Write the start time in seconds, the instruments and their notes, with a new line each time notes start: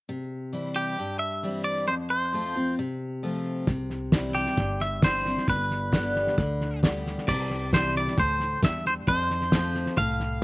0.09 steel-string acoustic guitar C3
0.53 steel-string acoustic guitar E3 G3 C4 E4
0.76 clean electric guitar G4
0.99 steel-string acoustic guitar G2
1.19 clean electric guitar E5
1.43 steel-string acoustic guitar E3 G3 C4 E4
1.64 clean electric guitar D5
1.88 steel-string acoustic guitar F2, clean electric guitar C5
2.10 clean electric guitar C5
2.33 steel-string acoustic guitar F3 A3 C4 F4
2.55 steel-string acoustic guitar C4 F4
2.79 steel-string acoustic guitar C3
3.23 steel-string acoustic guitar F3 A3 C4 F4
3.67 upright bass C2, steel-string acoustic guitar C3, kick, snare
3.90 snare
4.12 steel-string acoustic guitar E3 G3 C4 E4, kick, snare, hi-hat pedal
4.35 clean electric guitar G4, snare
4.46 snare
4.57 upright bass G1, steel-string acoustic guitar G2, kick, snare
4.81 clean electric guitar E5, snare
5.02 steel-string acoustic guitar E3 G3 C4 E4, clean electric guitar C5, kick, snare, hi-hat pedal
5.25 steel-string acoustic guitar C4 E4, snare
5.37 snare
5.48 upright bass G1, steel-string acoustic guitar G2, clean electric guitar B4, kick, snare
5.70 snare
5.92 steel-string acoustic guitar D3 G3 B3 G4, kick, snare, hi-hat pedal
6.16 snare
6.27 snare
6.38 upright bass D2, steel-string acoustic guitar D3, kick, snare
6.61 snare
6.83 steel-string acoustic guitar D3 G3 B3 G4, kick, snare, hi-hat pedal
7.06 snare
7.18 snare
7.27 upright bass C2, steel-string acoustic guitar C3, clean electric guitar D5, kick, snare, crash
7.50 snare
7.73 steel-string acoustic guitar E3 G3 C4 E4, clean electric guitar C5, kick, snare, hi-hat pedal
7.96 clean electric guitar D5, snare
8.07 snare
8.18 upright bass D2, steel-string acoustic guitar A2, clean electric guitar C5, kick, snare
8.40 snare
8.63 upright bass E2, steel-string acoustic guitar G2, clean electric guitar E5, kick, snare, hi-hat pedal
8.86 clean electric guitar C5, snare
9.08 upright bass F2, steel-string acoustic guitar F2, clean electric guitar C5, kick, snare
9.30 snare
9.41 snare
9.52 steel-string acoustic guitar F3 A3 C4 F4, kick, snare, hi-hat pedal
9.75 snare
9.86 snare
9.97 upright bass C2, steel-string acoustic guitar A2, clean electric guitar F5, kick, snare
10.20 snare